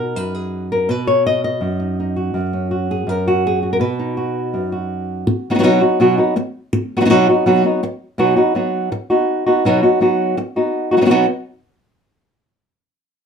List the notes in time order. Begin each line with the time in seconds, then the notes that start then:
Already playing: B2 D#4 F#4
0.00 A#4
0.16 F#2 B4
0.35 G#4
0.72 A#4
0.89 B2 B4
1.07 C#5
1.26 D#5
1.44 D#5
1.61 F#2
1.80 D#4
2.00 D#4
2.16 F#4
2.34 F#2
2.53 C#4
2.71 F#4
2.91 G#4
3.07 F#2 A#4
3.28 F#4
3.47 G#4
3.63 F#4
3.73 A#4
3.80 B2 B4
3.99 D#4
4.17 F#4
4.54 F#2
4.72 F#4
5.27 muted nylon-string guitar stroke
5.50 F#3 B3 D#4 F#4
5.54 F#3 B3 D#4 F#4
5.59 F#3 B3 D#4 F#4
5.63 B2 F#3 B3 D#4 F#4
5.81 B3 D#4 F#4
6.00 B2 F#3 B3 D#4 F#4
6.18 B3 D#4 F#4
6.36 muted nylon-string guitar stroke
6.73 muted nylon-string guitar stroke
6.97 F#3 B3 D#4 F#4
7.01 B3 D#4 F#4
7.05 F#3 B3 D#4 F#4
7.10 B2 F#3 B3 D#4 F#4
7.29 B3 D#4 F#4
7.46 B2 F#3 B3 D#4 F#4
7.64 B3 D#4 F#4
7.83 muted nylon-string guitar stroke
8.18 B2 F#3 B3 D#4 F#4
8.36 B3 D#4 F#4
8.55 F#3 B3 D#4 F#4
8.92 muted nylon-string guitar stroke
9.10 B3 D#4 F#4
9.46 B3 D#4 F#4
9.65 B2 F#3 B3 D#4 F#4
9.83 B3 D#4 F#4
10.00 F#3 B3 D#4 F#4
10.37 muted nylon-string guitar stroke
10.56 B3 D#4 F#4
10.91 B3 D#4 F#4
10.97 F#3 B3 D#4 F#4
11.01 F#3 B3 D#4 F#4
11.05 F#3 B3 D#4 F#4
11.10 B2 F#3 B3 D#4 F#4